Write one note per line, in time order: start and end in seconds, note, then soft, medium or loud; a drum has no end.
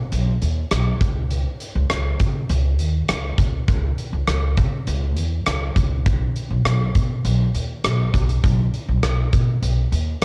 0.12 0.33 B1 medium
0.12 closed hi-hat medium
0.42 0.63 D#2 medium
0.42 closed hi-hat medium
0.71 0.93 B1 medium
0.71 cross-stick loud
0.71 closed hi-hat medium
1.01 1.44 C#2 medium
1.01 kick medium
1.01 closed hi-hat medium
1.31 closed hi-hat medium
1.60 closed hi-hat medium
1.75 1.86 C#2 medium
1.90 2.11 C#2 medium
1.90 cross-stick loud
1.90 closed hi-hat medium
2.19 2.41 C#3 medium
2.19 kick medium
2.19 closed hi-hat medium
2.49 2.79 C#2 medium
2.49 closed hi-hat medium
2.79 3.01 D#2 medium
2.79 closed hi-hat medium
3.08 3.31 C#2 medium
3.08 cross-stick loud
3.08 closed hi-hat medium
3.38 3.60 C#2 medium
3.38 kick medium
3.38 closed hi-hat medium
3.68 3.90 C#2 loud
3.68 kick loud
3.68 closed hi-hat medium
3.98 closed hi-hat medium
4.13 4.24 C#2 medium
4.27 4.59 C#2 medium
4.27 cross-stick loud
4.27 closed hi-hat medium
4.57 4.79 C#3 medium
4.57 kick medium
4.57 closed hi-hat medium
4.87 5.17 C#2 loud
4.87 closed hi-hat medium
5.17 5.39 E2 medium
5.17 closed hi-hat medium
5.46 5.68 C#2 medium
5.46 cross-stick loud
5.46 closed hi-hat medium
5.76 6.06 C#2 medium
5.76 kick medium
5.76 closed hi-hat medium
6.06 6.27 B1 medium
6.06 kick loud
6.06 closed hi-hat medium
6.36 closed hi-hat medium
6.50 6.61 B1 medium
6.65 6.87 B1 medium
6.65 cross-stick loud
6.65 closed hi-hat medium
6.95 7.17 B2 medium
6.95 kick medium
6.95 closed hi-hat medium
7.25 7.46 B1 medium
7.25 closed hi-hat medium
7.54 7.76 D#2 medium
7.54 closed hi-hat medium
7.84 8.06 B1 medium
7.84 cross-stick loud
7.84 closed hi-hat medium
8.14 8.35 B1 medium
8.14 kick medium
8.14 closed hi-hat medium
8.29 closed hi-hat soft
8.44 8.65 B1 loud
8.44 kick loud
8.44 closed hi-hat medium
8.74 closed hi-hat medium
8.88 8.99 B1 medium
9.03 9.24 B1 medium
9.03 cross-stick medium
9.03 closed hi-hat medium
9.33 9.54 B2 medium
9.33 kick medium
9.33 closed hi-hat medium
9.62 9.84 B1 medium
9.62 closed hi-hat medium
9.92 10.13 D#2 medium
9.92 closed hi-hat medium
10.22 10.25 B1 medium
10.22 closed hi-hat medium